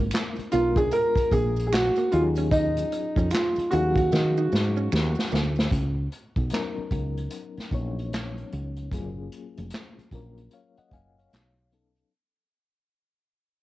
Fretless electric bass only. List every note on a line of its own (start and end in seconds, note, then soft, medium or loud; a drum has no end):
0.00 0.10 G#1 medium
0.38 muted fretless electric bass stroke soft
0.53 0.88 B1 medium
1.16 muted fretless electric bass stroke soft
1.32 1.89 A#1 medium
2.13 2.83 D#2 medium
3.17 3.30 F2 medium
3.58 muted fretless electric bass stroke soft
3.73 4.08 D#2 medium
4.13 4.47 D#3 loud
4.52 4.87 G#2 medium
4.93 5.14 D#2 loud
5.33 5.67 D2 medium
5.72 6.07 C#2 medium
6.37 6.50 B1 medium
6.78 muted fretless electric bass stroke soft
6.92 7.27 C#2 medium
7.58 muted fretless electric bass stroke soft
7.72 8.43 A#1 medium
8.53 8.88 C#2 medium
8.93 9.27 F#1 medium
9.58 9.71 F1 medium
9.98 muted fretless electric bass stroke soft
10.12 10.47 A#1 medium
10.78 muted fretless electric bass stroke soft
10.93 11.27 F#1 medium
11.33 12.03 B1 medium